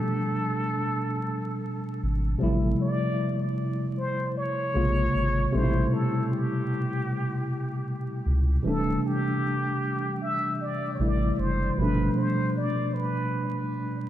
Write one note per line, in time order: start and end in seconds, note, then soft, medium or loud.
0.00 2.38 B2 medium
0.00 2.38 F3 medium
0.00 2.39 G3 medium
0.00 2.39 A3 medium
0.00 2.40 D4 medium
0.00 2.04 A4 loud
2.03 2.35 G#1 medium
2.38 2.74 A1 loud
2.38 4.70 C3 medium
2.38 4.70 F3 medium
2.38 4.71 G3 medium
2.38 4.71 A3 medium
2.43 4.72 E4 medium
2.82 3.55 D5 loud
3.98 4.34 C5 loud
4.38 5.56 C#5 loud
4.74 5.08 A#1 medium
4.74 5.51 C3 medium
4.74 5.53 C#3 medium
4.74 5.53 G#3 medium
4.74 5.53 A#3 medium
4.74 5.54 F4 medium
5.15 5.47 G#1 medium
5.52 5.86 A1 loud
5.52 8.60 C3 medium
5.52 8.61 G3 medium
5.52 8.62 A3 medium
5.52 5.95 C5 loud
5.56 8.62 B2 medium
5.56 5.63 D#4 medium
5.64 8.66 E4 medium
5.93 6.34 A4 medium
6.32 8.26 G4 medium
8.26 8.58 C#2 medium
8.63 8.97 D1 loud
8.63 10.93 C3 medium
8.63 10.94 E3 medium
8.63 10.95 G3 medium
8.63 10.95 A3 medium
8.68 10.96 D4 medium
8.68 9.08 A4 loud
9.06 10.22 G4 loud
10.22 10.62 E5 loud
10.61 10.93 D5 loud
10.94 11.02 C#5 medium
10.99 11.31 A1 medium
10.99 11.77 C3 soft
10.99 11.77 E3 soft
10.99 11.78 G3 soft
10.99 11.78 A3 soft
10.99 11.78 E4 medium
10.99 11.41 D5 medium
11.38 11.71 F#1 medium
11.38 11.79 C5 loud
11.77 12.09 G1 loud
11.77 14.09 B2 medium
11.77 14.09 F3 medium
11.77 14.09 G3 medium
11.77 12.19 B4 loud
11.81 14.09 A3 medium
11.81 14.09 D4 medium
12.18 12.55 C5 medium
12.57 12.96 D5 medium
12.94 13.72 B4 medium